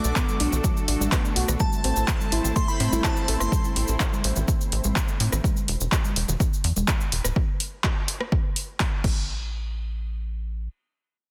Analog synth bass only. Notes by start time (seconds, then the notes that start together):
0.05 B1
0.40 B1
0.52 B1
0.88 A1
1.00 A1
1.36 B1
1.48 B1
1.84 A1
1.96 A1
2.32 A1
2.44 A1
2.80 A2
2.92 A1
3.28 A1
3.40 G1
3.76 A1
3.88 A1
4.24 A1
4.36 A1
4.72 A1
4.85 A1
5.20 A2
5.32 A1
5.68 E1
5.80 E1
6.16 E1
6.28 E1
6.64 E2
6.76 E1
7.12 E1
7.24 D1
9.04 A1